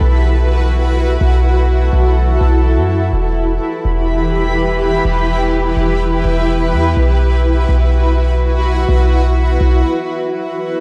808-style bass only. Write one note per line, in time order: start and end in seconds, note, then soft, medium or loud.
0.01 1.17 B1 loud
1.21 1.90 B1 loud
1.93 2.39 B1 loud
2.41 2.79 B1 loud
2.77 3.11 F#2 loud
3.13 3.59 E1 loud
3.85 5.01 E1 loud
5.05 5.74 E1 loud
5.77 6.23 E1 loud
6.25 6.74 E1 loud
6.73 6.96 E2 loud
6.97 7.66 B1 loud
7.69 8.85 B1 loud
8.89 9.58 B1 loud
9.61 9.84 B1 loud